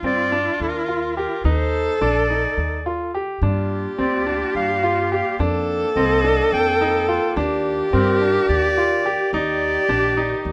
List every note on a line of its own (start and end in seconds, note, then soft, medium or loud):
0.00 0.47 G2 medium
0.00 1.47 F4 medium
0.04 0.28 C4 medium
0.04 0.58 D5 loud
0.32 0.80 D4 medium
0.60 1.25 D#2 medium
0.60 1.14 A#4 medium
0.88 1.12 F4 medium
1.17 1.41 G4 medium
1.17 1.43 A#4 medium
1.44 1.88 D#2 medium
1.44 1.92 D#4 medium
1.44 3.15 A4 loud
1.44 1.97 C5 medium
2.01 2.45 A#1 medium
2.01 2.25 D4 medium
2.01 3.10 D5 medium
2.30 2.77 D#4 medium
2.57 3.22 D#2 medium
2.86 3.10 F4 medium
3.14 3.38 G4 medium
3.42 3.85 G2 medium
3.42 5.38 G3 medium
3.42 7.33 A#3 medium
3.42 3.90 D4 medium
3.42 5.38 F4 medium
3.42 5.40 G4 medium
3.98 4.42 D2 medium
3.98 4.22 C4 medium
3.98 4.52 D5 medium
4.27 4.74 D4 medium
4.55 5.20 G2 medium
4.55 5.08 F5 medium
4.83 5.07 F4 medium
5.12 5.36 G4 medium
5.12 5.38 F5 medium
5.39 5.83 F2 medium
5.39 7.35 D#3 medium
5.39 7.35 F3 medium
5.39 5.87 D4 medium
5.39 7.35 G4 medium
5.39 7.37 A4 loud
5.96 6.39 C2 medium
5.96 6.20 C4 medium
5.96 6.49 D#5 medium
6.24 6.72 D4 medium
6.52 7.17 F2 medium
6.52 7.05 G5 medium
6.81 7.05 D#4 medium
7.08 7.32 F4 medium
7.08 7.35 G5 medium
7.36 7.80 D#2 medium
7.36 9.31 D#3 medium
7.36 9.31 A#3 medium
7.36 7.84 D4 medium
7.36 9.32 F4 medium
7.36 9.33 G4 loud
7.36 10.52 G4 medium
7.36 10.52 D5 medium
7.93 8.36 G2 medium
7.93 8.17 C4 medium
7.93 8.45 A#4 medium
8.22 8.69 D4 medium
8.49 9.14 D#2 medium
8.49 9.29 D5 loud
8.78 9.01 F4 medium
9.06 9.29 G4 medium
9.33 9.76 D#2 medium
9.33 10.52 D#3 medium
9.33 9.81 D#4 medium
9.33 10.52 G4 loud
9.33 10.52 D5 loud
9.89 10.32 A#1 medium
9.89 10.13 D4 medium
10.17 10.52 D#4 medium
10.45 10.52 D#2 medium